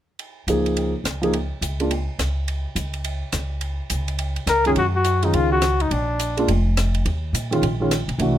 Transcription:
0.19 ride soft
0.47 0.93 C#2 medium
0.47 0.91 F3 soft
0.47 0.91 A#3 soft
0.47 0.91 D#4 soft
0.47 0.92 G#4 soft
0.47 hi-hat pedal soft
0.47 ride soft
0.66 ride soft
0.77 ride soft
1.04 1.50 C#2 medium
1.04 cross-stick medium
1.04 hi-hat pedal soft
1.04 ride soft
1.22 1.32 F3 medium
1.22 1.33 A#3 soft
1.22 1.33 D#4 soft
1.22 1.33 G#4 medium
1.22 ride soft
1.33 ride soft
1.61 2.07 C#2 medium
1.61 hi-hat pedal soft
1.61 ride soft
1.80 1.90 G#3 soft
1.80 1.90 A#3 soft
1.80 1.90 D4 soft
1.80 1.90 F4 soft
1.80 ride soft
1.91 ride soft
2.19 2.64 C#2 medium
2.19 cross-stick soft
2.19 hi-hat pedal medium
2.19 ride soft
2.48 ride soft
2.75 3.21 C#2 medium
2.75 hi-hat pedal soft
2.75 ride medium
2.94 ride soft
3.04 ride soft
3.32 3.79 C#2 medium
3.32 cross-stick soft
3.32 hi-hat pedal soft
3.32 ride soft
3.61 ride soft
3.90 4.36 C#2 medium
3.90 hi-hat pedal soft
3.90 ride medium
4.08 ride soft
4.19 ride soft
4.36 ride soft
4.46 4.74 C#2 medium
4.46 4.65 A#4 medium
4.46 cross-stick soft
4.46 hi-hat pedal soft
4.46 ride soft
4.65 4.76 F#2 medium
4.65 4.76 D#3 soft
4.65 4.76 G#3 soft
4.65 4.76 C#4 medium
4.65 4.77 F4 medium
4.65 4.72 G#4 medium
4.65 ride soft
4.75 5.30 F#2 medium
4.75 4.86 F#4 medium
4.75 ride soft
4.96 5.26 F#4 medium
5.04 hi-hat pedal soft
5.04 ride soft
5.23 5.60 D#3 soft
5.23 5.61 G#3 soft
5.23 5.61 C#4 soft
5.23 5.36 D#4 medium
5.23 5.61 F4 soft
5.23 ride soft
5.33 5.88 C#2 medium
5.33 5.52 F4 medium
5.33 ride soft
5.52 5.83 F#4 medium
5.62 cross-stick medium
5.62 hi-hat pedal soft
5.62 ride medium
5.80 5.93 D#4 medium
5.80 ride soft
5.91 6.45 A#1 medium
5.91 6.49 D4 medium
5.91 ride soft
6.20 hi-hat pedal medium
6.20 ride medium
6.37 6.47 G#3 medium
6.37 6.47 A#3 soft
6.37 6.48 D4 medium
6.37 6.48 F4 medium
6.37 ride soft
6.48 7.02 F1 medium
6.48 ride soft
6.77 cross-stick medium
6.77 hi-hat pedal soft
6.77 ride medium
6.94 ride soft
7.06 7.32 D#2 medium
7.06 ride soft
7.33 7.60 A#2 medium
7.33 hi-hat pedal medium
7.33 ride medium
7.51 7.61 D#3 medium
7.51 7.61 G#3 soft
7.51 7.62 C#4 soft
7.51 7.62 F4 medium
7.51 ride soft
7.62 8.05 A#1 medium
7.62 ride soft
7.80 7.90 D#3 soft
7.80 7.90 G#3 soft
7.80 7.91 C#4 medium
7.80 7.91 F4 medium
7.91 cross-stick medium
7.91 hi-hat pedal soft
7.91 ride medium
8.08 8.18 A#1 medium
8.08 ride soft
8.19 8.38 C2 medium
8.19 8.38 E3 medium
8.19 8.38 A3 soft
8.19 8.38 D4 soft
8.19 8.38 F#4 medium
8.19 ride soft

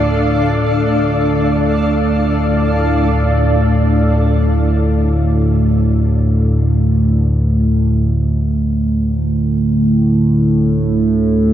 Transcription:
0.00 3.09 D2 medium
0.00 3.09 A2 medium
0.00 3.10 D4 medium
0.00 3.11 A4 medium
0.00 3.11 D5 medium
0.00 3.15 D5 medium
0.00 3.10 F5 medium
3.10 11.53 D2 medium
3.10 11.53 A2 medium

